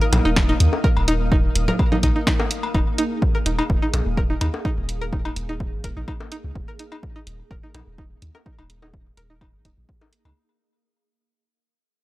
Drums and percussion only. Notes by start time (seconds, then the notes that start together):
0.13 closed hi-hat, cowbell, low bongo, low conga
0.36 kick, snare
0.60 closed hi-hat
0.73 low bongo
0.84 kick
0.97 cowbell
1.08 closed hi-hat
1.32 kick
1.55 closed hi-hat
1.68 low conga
1.79 kick, cowbell
1.92 low conga
2.03 kick, closed hi-hat
2.27 kick, snare
2.40 low bongo
2.51 closed hi-hat
2.63 cowbell
2.75 kick, cowbell
2.98 closed hi-hat
3.22 kick
3.46 closed hi-hat
3.59 cowbell
3.70 kick
3.94 closed hi-hat, low bongo
4.17 kick
4.41 closed hi-hat, cowbell
4.54 low bongo
4.65 kick
4.89 closed hi-hat
5.13 kick
5.25 cowbell
5.36 closed hi-hat
5.60 kick
5.84 kick, closed hi-hat
6.08 kick, cowbell
6.20 low bongo
6.32 closed hi-hat
6.55 kick
6.79 closed hi-hat
6.92 cowbell
7.03 kick
7.27 closed hi-hat
7.51 kick
7.75 closed hi-hat, cowbell, low bongo
7.98 kick
8.22 closed hi-hat
8.35 low bongo
8.46 kick
8.59 cowbell
8.70 closed hi-hat
8.82 low bongo
8.94 kick
9.17 closed hi-hat
9.41 kick, cowbell
9.65 kick, closed hi-hat
9.89 kick
10.01 low bongo
10.13 closed hi-hat
10.25 cowbell